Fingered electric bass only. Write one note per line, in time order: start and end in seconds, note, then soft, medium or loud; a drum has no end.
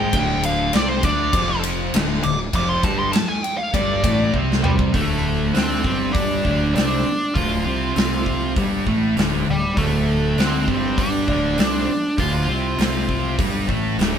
0.00 0.11 G#1 loud
0.13 0.69 D1 loud
0.74 1.02 C2 loud
1.03 1.31 D2 medium
1.33 1.89 F1 medium
1.94 2.22 D1 medium
2.24 2.52 D1 medium
2.53 2.81 F1 loud
2.83 3.11 G1 medium
3.74 4.02 G1 loud
4.03 4.32 A1 medium
4.34 4.90 C2 loud
4.94 5.50 D1 medium
5.54 5.82 D2 medium
5.84 6.41 G1 medium
6.45 6.73 D1 medium
6.74 7.03 C2 medium
7.05 muted fingered electric bass stroke soft
7.36 7.64 D1 medium
7.66 7.94 C2 medium
7.96 8.52 C2 medium
8.57 8.84 G1 medium
8.87 9.15 A1 medium
9.17 9.45 D1 medium
9.48 9.75 D1 medium
9.77 10.33 D1 medium
10.38 10.66 D2 medium
10.68 11.24 G1 medium
11.28 11.56 D1 medium
11.59 11.86 C2 medium
11.89 muted fingered electric bass stroke soft
12.19 12.46 D1 loud
12.48 12.76 C2 medium
12.78 13.35 C2 medium
13.39 13.67 G1 medium
13.69 13.97 A1 medium
13.98 14.19 D1 medium